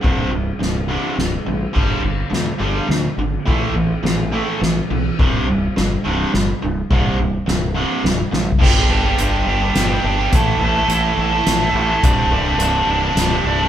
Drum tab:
CC |------------------|x-----------------|------------------|------------------|
RD |x-----x-----x--x--|------x-----x-----|x-----x-----x--x--|------------------|
HH |------------------|------------------|------------------|------------------|
SD |------o-----o-----|------o-----o-----|------o-----o-----|------o-----o-----|
FT |------------------|------------------|------------------|------------------|
BD |o-----------------|o-----------------|o-----------------|o-----------------|

CC |------------------|x-----------------|------------------|------------------|
RD |------------------|------------------|------------------|------------------|
HH |------------------|------x-----x-----|x-----x-----x-----|x-----x-----x-----|
SD |------o-----o--o--|------------o-----|------------o-----|------------o-----|
FT |-----------------o|------------------|------------------|------------------|
BD |o-----------------|o-----------------|o-----------------|o-----------------|